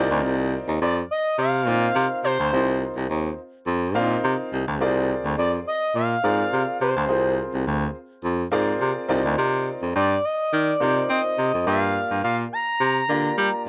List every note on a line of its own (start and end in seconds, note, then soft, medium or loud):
0.00 0.87 C4 loud
0.00 0.87 D#4 medium
0.00 0.87 F4 medium
0.00 0.87 A#4 medium
0.00 0.87 D5 loud
0.11 0.26 D2 loud
0.25 0.57 C2 loud
0.68 0.78 D#2 medium
0.81 1.02 F2 loud
0.81 0.95 D5 medium
1.11 1.37 D#5 loud
1.39 1.69 C3 loud
1.39 2.21 F5 loud
1.66 1.88 A#2 loud
1.66 2.31 C4 medium
1.66 2.31 D#4 medium
1.66 2.31 F4 medium
1.66 2.31 A#4 medium
1.66 2.31 C5 medium
1.96 2.07 C3 loud
2.24 2.35 C3 medium
2.24 2.77 C5 medium
2.39 2.49 D2 medium
2.52 2.85 C2 loud
2.52 3.38 C4 medium
2.52 3.38 D#4 medium
2.52 3.38 F4 medium
2.52 3.38 A#4 medium
2.52 3.38 C5 medium
2.96 3.06 C2 medium
3.10 3.31 D#2 medium
3.67 3.97 F2 loud
3.95 4.17 A#2 loud
3.95 4.59 C4 loud
3.95 4.02 D4 medium
3.95 4.59 F4 medium
3.95 4.60 A#4 medium
3.95 4.60 F5 loud
4.01 4.63 D#4 medium
4.24 4.35 C3 loud
4.53 4.64 C2 loud
4.68 4.83 D2 loud
4.81 5.13 C2 loud
4.81 5.66 C4 medium
4.81 5.66 F4 medium
4.81 5.66 G#4 medium
4.81 5.66 A#4 medium
4.81 5.67 D5 loud
5.24 5.34 D2 medium
5.38 5.59 F2 loud
5.38 5.51 D5 loud
5.67 5.94 D#5 loud
5.95 6.16 A#2 medium
5.95 6.77 F5 loud
6.23 6.45 G#2 loud
6.23 6.88 C4 medium
6.23 6.88 F4 medium
6.23 6.88 G#4 medium
6.23 6.88 A#4 medium
6.23 6.88 D5 medium
6.53 6.64 C3 loud
6.81 6.92 C3 loud
6.81 7.35 C5 medium
6.96 7.11 D2 loud
7.08 7.42 C2 loud
7.08 7.94 C4 medium
7.08 7.94 F4 medium
7.08 7.94 G#4 medium
7.08 7.95 A#4 medium
7.08 7.95 C5 medium
7.53 7.63 C2 loud
7.67 7.88 D2 loud
8.24 8.45 F2 loud
8.52 8.74 G#2 medium
8.52 9.07 C4 medium
8.52 9.08 F4 medium
8.52 9.09 G#4 medium
8.52 9.08 A#4 medium
8.52 9.08 D5 loud
8.81 8.92 C3 loud
9.08 9.21 C2 loud
9.08 10.01 C4 loud
9.08 10.01 D#4 medium
9.08 10.01 F4 medium
9.08 10.01 A#4 medium
9.08 10.01 D5 loud
9.25 9.35 D2 loud
9.38 9.70 C3 loud
9.82 9.92 F2 medium
9.96 10.17 G2 loud
9.96 10.26 D5 medium
10.25 10.54 D#5 medium
10.53 10.74 D#3 loud
10.53 11.12 D5 medium
10.80 11.02 C3 loud
10.80 11.45 C4 medium
10.80 11.45 D#4 medium
10.80 11.45 F4 medium
10.80 11.45 A#4 medium
10.80 11.45 C5 medium
11.10 11.21 C4 loud
11.10 11.67 D#5 medium
11.38 11.49 C3 loud
11.54 11.63 F2 medium
11.66 11.99 G2 loud
11.66 12.52 A#3 medium
11.66 12.52 D4 medium
11.66 12.52 F4 medium
11.66 12.52 G4 medium
11.66 12.52 D5 medium
11.66 12.20 F5 loud
12.11 12.20 G2 medium
12.24 12.45 A#2 medium
12.24 12.37 F5 medium
12.53 13.63 A#5 loud
12.80 13.02 C3 loud
13.09 13.30 D3 medium
13.09 13.69 A#3 medium
13.09 13.69 D4 medium
13.09 13.69 F4 medium
13.09 13.69 G4 medium
13.09 13.69 D5 medium
13.38 13.49 G3 loud